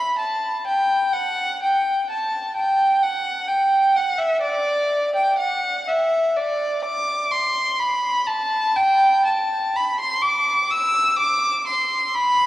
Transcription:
Already playing: B5
0.18 A5
0.67 G5
1.12 F#5
1.62 G5
2.10 A5
2.56 G5
3.02 F#5
3.48 G5
3.96 F#5
4.18 E5
4.41 D5
5.15 G5
5.38 F#5
5.88 E5
6.36 D5
6.84 D6
7.31 C6
7.79 B5
8.27 A5
8.76 G5
9.25 A5
9.76 B5
10.00 C6
10.22 D6
10.70 E6
11.18 D6
11.67 C6
12.14 B5

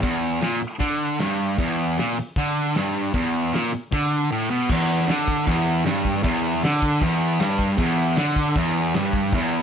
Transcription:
0.02 E2, kick, open hi-hat
0.22 open hi-hat
0.41 A#2, snare, open hi-hat
0.61 muted distorted electric guitar stroke, open hi-hat
0.79 D3, kick, open hi-hat
1.00 open hi-hat
1.19 G2, snare, open hi-hat
1.40 open hi-hat
1.58 E2, kick, open hi-hat
1.79 open hi-hat
1.98 A#2, snare, open hi-hat
2.17 muted distorted electric guitar stroke, open hi-hat
2.36 D3, kick, open hi-hat
2.56 open hi-hat
2.75 G2, snare, open hi-hat
2.95 open hi-hat
3.13 E2, kick, open hi-hat
3.34 open hi-hat
3.53 A#2, snare, open hi-hat
3.73 muted distorted electric guitar stroke, open hi-hat
3.92 D3, kick, open hi-hat
4.12 open hi-hat
4.31 A2
4.50 B2
4.70 E2, kick, crash
5.00 snare
5.07 D3, snare, crash
5.28 kick
5.46 E2, kick, crash
5.85 G2, snare, crash
6.05 kick
6.15 snare
6.23 E2, kick, crash
6.55 snare
6.63 D3, snare, crash
6.82 kick
7.01 E2, kick, crash
7.40 G2, snare, crash
7.59 kick
7.78 E2, kick, crash
8.16 D3, snare, crash
8.36 kick
8.56 E2, kick, crash
8.94 G2, snare, crash
9.13 kick
9.24 snare
9.32 E2, kick, crash

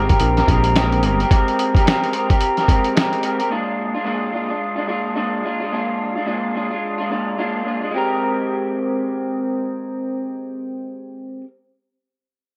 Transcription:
Already playing: G#1 C4 G4
0.09 C4 G4 A#4, kick, closed hi-hat
0.20 A#1, closed hi-hat
0.37 C4 G4 A#4, snare, closed hi-hat
0.48 A#1 G#3 C4 G4, kick, closed hi-hat
0.52 A#4
0.64 closed hi-hat
0.76 G#3 C4 G4 A#4, snare, closed hi-hat
0.92 closed hi-hat
1.03 G1 G#3 C4 G4 A#4, closed hi-hat
1.20 C4 G4 A#4, closed hi-hat
1.31 G#3 C4 G4 A#4, kick, closed hi-hat
1.48 closed hi-hat
1.59 closed hi-hat
1.74 C4 G4 A#4, kick, closed hi-hat
1.85 G#3 C4 G4 A#4, snare, closed hi-hat
2.04 closed hi-hat
2.12 G#3 C4 G4 A#4, closed hi-hat
2.29 C4 G4 A#4, kick, closed hi-hat
2.41 closed hi-hat
2.57 C4 G4 A#4, snare, closed hi-hat
2.68 G#3 C4 G4 A#4, kick, closed hi-hat
2.84 closed hi-hat
2.96 G#3 C4 G4 A#4, snare, closed hi-hat
3.13 closed hi-hat
3.22 G#3 C4 G4 A#4, closed hi-hat
3.39 C4 G4 A#4, closed hi-hat
3.50 A#2 G#3 D4 F4
3.94 G#3 D4 F4
4.04 A#2 G#3 D4 F4
4.32 A#2 G#3 D4 F4
4.48 G#3 D4 F4
4.76 G#3 D4 F4
4.86 A#2 G#3 D4 F4
5.15 A#2 G#3 D4 F4
5.43 A#2 G#3 D4 F4
5.60 G#3 D4 F4
5.72 A#2 G#3 D4 F4
6.15 G#3 D4 F4
6.26 A#2 G#3 D4 F4
6.54 A#2 G#3 D4 F4
6.71 G#3 D4 F4
6.98 G#3 D4 F4
7.10 A#2 G#3 D4 F4
7.38 A#2 G#3 D4 F4
7.64 A#2 G#3 D4 F4
7.81 G#3 D4 F4
7.91 G#3 C4
7.96 G4 A#4

